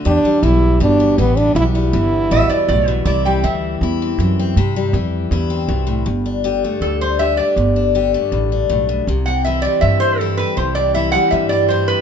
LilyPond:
<<
  \new Staff \with { instrumentName = "Resonator guitar played with a steel bar" } { \time 4/4 \key g \major \tempo 4 = 160 r1 | r2 e''8 d''8 d''8 b'8 | d''8 g''8 e''4 r2 | r1 |
r2 a'8 c''8 e''8 d''8~ | d''2 r2 | r8 fis''8 e''8 d''8 e''8 c''8 a'8 b'8 | c''8 d''8 e''8 fis''8 e''8 d''8 c''8 b'8 | }
  \new Staff \with { instrumentName = "French horn" } { \time 4/4 \key g \major d'4 e'4 d'4 b8 d'8 | e'8 e'2. r8 | r1 | r1 |
r1 | r1 | r1 | r1 | }
  \new Staff \with { instrumentName = "Steel-string acoustic guitar" } { \clef bass \time 4/4 \key g \major << { g'8 g4. g'8 b8 g8 b8 | b8 g4. b8 b4. | e'8 g4. e'8 c'4 c'8 | e'8 g4. e'8 c'4. |
r8 d'8 g'8 a4 d'8 g'8 d'8 | r8 d'8 g'8 a4 d'4. | r8 c'8 e'8 g4 c'8 e'8 c'8 | r8 c'8 e'8 g4 c'8 e'8 c'8 | } \\ { e,4 e4 b,4 e4 | e,4 e4 b,4 a,8 b,8 | c4 e2 e4 | c4 e4 g,4 b,8 a,8 |
g,4 d4 g,4 d4 | g,4 d4 g,4 a,8 b,8 | c4 e4 g,4 e4 | c4 e4 g,4 e4 | } >> }
  \new Staff \with { instrumentName = "Upright bass" } { \clef bass \time 4/4 \key g \major e,8 r8 b,,4 g,,4 a,,4 | b,,4 g,,4 a,,8 r8 b,,4 | c,4 d,4 e,4 fis,4 | g,4 f,4 e,4 c,4 |
g,,2 d,2 | g,,2 a,,4 b,,4 | c,2 g,2 | c,2 g,2 | }
>>